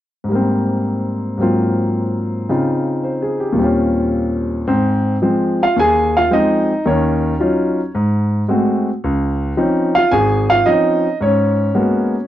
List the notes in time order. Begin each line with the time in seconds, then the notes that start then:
0.24 G#2
0.28 G3 A#3
0.35 C4
1.38 G#2 F#3 A#3 C4
1.43 F4
2.49 C#3 C4 D#4 F4
3.04 C5
3.22 G#4
3.40 G4
3.52 D#2 A#2
3.57 G3 C4
3.61 C#4 F4
4.68 G#2 C4
5.22 F3 G#3 C4
5.63 F4 F5
5.76 D#2 G#4 G#5
6.17 F4 F5
6.31 F3 G#3 C4 D#4 D#5
6.85 D#2 D#3 C#4 C#5
7.40 F#3 C#4 D#4 F4
7.95 G#2
8.48 G#3 A3 C4 F#4
9.04 C#2
9.57 F3 C4 C#4 D#4
9.95 F4 F5
10.11 G#1 G#4 G#5
10.50 F4 F5
10.66 F3 C4 C#4 D#4 D#5
11.21 G#2 C#4 C#5
11.74 G#3 A#3 B3 F#4